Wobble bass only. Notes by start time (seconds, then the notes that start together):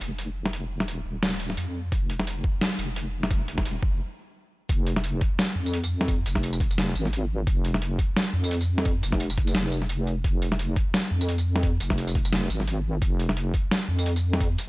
0.01 F1
0.74 E1
1.05 D#1
1.57 F2
1.92 F1
2.79 F1
3.52 E1
3.83 F1
4.69 F1
5.56 F2
6.26 F1
6.95 G#1
7.47 F1
8.33 F2
9.03 F1
9.55 F1
10.25 F1
11.11 F2
11.81 F1
12.50 G#1
13.02 F1
13.88 F2